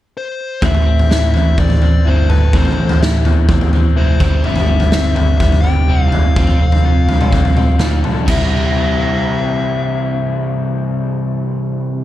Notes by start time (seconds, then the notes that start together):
0.17 C5
0.62 A1 A2 E3 C4 E5, kick, floor tom
0.74 floor tom
0.86 A1 A2 E3 C4
0.99 floor tom
1.09 A1 A2 E3 E4, snare
1.34 A2 E3 C4 E5, floor tom
1.58 A1 A2 E3 C4 D5, kick, floor tom
1.70 floor tom
1.82 A2 E3 C4, floor tom
2.05 G1 A2 E3 C4 E4 C5
2.29 A2 E3 A4 B4, floor tom
2.53 A1 A2 E3 C4 C5, kick, floor tom
2.65 floor tom
2.77 A1 A2 E3 C4
2.89 floor tom
3.00 A1 A2 E3 E4, snare
3.24 E2 A2 E3 C4, floor tom
3.49 E2 A2 E3 C4, kick, floor tom
3.61 floor tom
3.73 A2 E3 C4, floor tom
3.96 F1 A2 E3 C4 E4 C5
4.20 G1 G3 C4 E4, kick, floor tom
4.44 G1 G3 C4 E4 E5, floor tom
4.56 floor tom
4.68 G1 G3 C4
4.80 floor tom
4.92 G1 G3 C4, snare
5.15 G3 C4 E5, floor tom
5.38 G1 G3 C4 E5, kick, floor tom
5.52 floor tom
5.61 G3 C4 G5, floor tom
5.88 F1 G3 C4 E4
6.08 F5
6.12 G3 C4 E4, floor tom
6.36 F1 F3 C4 F4, kick, floor tom
6.47 floor tom
6.59 F1 F3 C4
6.72 floor tom
6.83 F1 F3 C4 F4
7.08 C2 F3 C4, floor tom
7.21 mid tom
7.31 C2 F3 C4, kick, floor tom
7.45 floor tom
7.55 F3 C4, mid tom
7.79 D2 F3 C4 F4, snare, floor tom, mid tom
8.03 C2 F3 C4 A4, floor tom, mid tom
8.26 C2 C3 E3 G3 E4 G4, kick, crash
8.30 C4 E5